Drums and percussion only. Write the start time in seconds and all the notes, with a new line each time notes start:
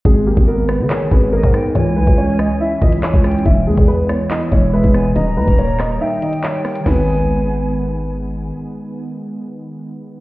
0.05 kick, closed hi-hat
0.37 kick, closed hi-hat
0.69 cross-stick, closed hi-hat
0.90 clap, closed hi-hat
1.11 kick, closed hi-hat
1.43 kick, closed hi-hat
1.54 cross-stick, closed hi-hat
1.75 closed hi-hat
2.07 kick, closed hi-hat
2.39 cross-stick, closed hi-hat
2.82 kick, closed hi-hat
2.92 closed hi-hat
3.03 clap
3.14 kick
3.24 cross-stick, closed hi-hat, open hi-hat
3.31 closed hi-hat
3.38 closed hi-hat
3.45 kick, closed hi-hat
3.77 kick, closed hi-hat
4.09 cross-stick, closed hi-hat
4.31 clap, closed hi-hat
4.52 kick, closed hi-hat
4.84 kick, closed hi-hat
4.94 cross-stick, closed hi-hat
5.16 closed hi-hat
5.48 kick, closed hi-hat
5.58 closed hi-hat
5.80 cross-stick, clap, closed hi-hat
6.22 closed hi-hat
6.33 closed hi-hat
6.44 clap
6.65 cross-stick, closed hi-hat, open hi-hat
6.75 closed hi-hat
6.86 snare, floor tom, crash